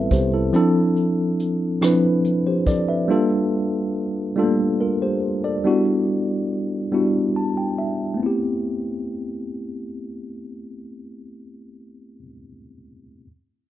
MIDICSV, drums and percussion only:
0, 0, Header, 1, 2, 480
1, 0, Start_track
1, 0, Key_signature, 0, "minor"
1, 0, Tempo, 851064
1, 302, Time_signature, 6, 3, 24, 8
1, 7721, End_track
2, 0, Start_track
2, 0, Title_t, "Drums"
2, 60, Note_on_c, 9, 42, 54
2, 63, Note_on_c, 9, 36, 78
2, 117, Note_off_c, 9, 42, 0
2, 119, Note_off_c, 9, 36, 0
2, 302, Note_on_c, 9, 42, 63
2, 358, Note_off_c, 9, 42, 0
2, 542, Note_on_c, 9, 42, 43
2, 599, Note_off_c, 9, 42, 0
2, 786, Note_on_c, 9, 42, 63
2, 842, Note_off_c, 9, 42, 0
2, 1025, Note_on_c, 9, 42, 74
2, 1029, Note_on_c, 9, 37, 92
2, 1081, Note_off_c, 9, 42, 0
2, 1085, Note_off_c, 9, 37, 0
2, 1266, Note_on_c, 9, 42, 45
2, 1322, Note_off_c, 9, 42, 0
2, 1500, Note_on_c, 9, 42, 52
2, 1503, Note_on_c, 9, 36, 76
2, 1557, Note_off_c, 9, 42, 0
2, 1560, Note_off_c, 9, 36, 0
2, 7721, End_track
0, 0, End_of_file